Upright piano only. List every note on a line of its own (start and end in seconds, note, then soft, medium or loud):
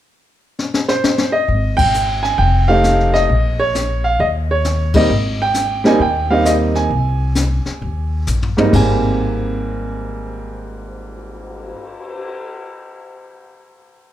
0.89 1.35 C5 medium
1.32 1.75 D#5 medium
1.77 2.20 G5 loud
2.23 2.37 G#5 medium
2.38 2.66 G5 medium
2.68 3.26 A3 medium
2.68 3.26 C4 medium
2.68 3.26 D#4 medium
2.68 3.27 G4 medium
2.68 3.15 F5 medium
3.14 3.60 D#5 loud
3.60 4.06 C#5 loud
4.04 4.19 F5 medium
4.20 4.27 D#5 medium
4.51 4.92 C#5 medium
4.94 5.08 G3 medium
4.94 5.09 A#3 medium
4.94 5.09 C4 medium
4.94 5.09 D#4 medium
4.94 5.42 D#5 medium
5.42 5.87 G5 medium
5.84 5.98 G3 medium
5.84 5.99 A#3 medium
5.84 5.99 C4 medium
5.84 5.99 D#4 medium
5.84 6.02 G#5 medium
6.01 6.32 G5 medium
6.30 6.88 G3 medium
6.30 6.89 A#3 medium
6.30 6.88 C4 medium
6.30 6.89 D#4 medium
6.30 6.46 F5 medium
6.46 6.53 D#5 medium
6.76 8.23 G#5 medium
8.57 8.70 G#2 medium
8.57 8.71 G3 medium
8.57 8.72 A#3 medium
8.57 8.72 C4 medium
8.57 8.72 D#4 medium
8.72 11.75 G#2 medium
8.72 11.76 G3 medium
8.72 11.77 A#3 medium
8.72 11.77 C4 medium
8.72 11.74 G#5 medium